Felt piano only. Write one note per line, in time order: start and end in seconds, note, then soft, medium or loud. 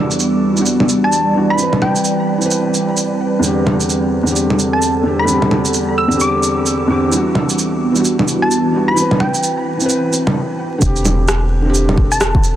0.00 0.52 E3 medium
0.00 0.53 G3 medium
0.00 0.55 D4 medium
0.00 0.56 F#4 medium
0.53 1.32 E3 medium
0.53 1.33 G3 medium
0.59 1.34 D4 medium
0.59 1.36 F#4 medium
1.34 1.53 E3 medium
1.34 1.56 G3 medium
1.34 1.57 D4 medium
1.34 1.58 F#4 medium
1.55 2.36 E3 medium
1.55 2.39 C4 medium
1.62 2.41 B4 medium
2.38 3.16 E3 medium
2.38 3.18 C4 medium
2.46 3.20 B4 medium
3.39 4.21 E2 medium
3.39 4.23 D3 medium
3.45 4.24 C4 medium
3.45 4.25 G4 medium
4.23 5.01 E2 medium
4.23 5.02 D3 medium
4.28 5.04 C4 medium
4.28 5.05 G4 medium
5.03 5.23 E2 medium
5.03 5.26 D3 medium
5.03 5.26 C4 medium
5.03 5.27 G4 medium
5.25 6.06 E2 medium
5.25 6.08 D3 medium
5.30 6.09 C4 medium
5.30 6.10 G4 medium
6.08 6.86 E2 medium
6.08 6.87 D3 medium
6.13 6.88 C4 medium
6.13 6.90 G4 medium
6.88 7.10 E2 medium
6.88 7.10 D3 medium
6.88 7.11 C4 medium
6.92 7.12 G4 medium
7.09 7.90 E3 medium
7.09 7.92 G3 medium
7.14 7.93 D4 medium
7.14 7.95 F#4 medium
7.92 8.70 E3 medium
7.92 8.72 G3 medium
7.97 8.73 D4 medium
7.97 8.74 F#4 medium
8.72 8.92 E3 medium
8.72 8.95 G3 medium
8.72 8.96 D4 medium
8.72 8.96 F#4 medium
8.93 9.75 E3 medium
8.93 9.77 C4 medium
9.01 9.79 B4 medium
9.77 10.34 E3 medium
9.81 10.36 C4 medium
9.81 10.38 B4 medium
10.78 11.60 D3 medium
10.78 11.62 C4 medium
10.86 11.64 G4 loud
11.61 12.39 D3 medium
11.61 12.41 C4 medium
11.69 12.44 G4 loud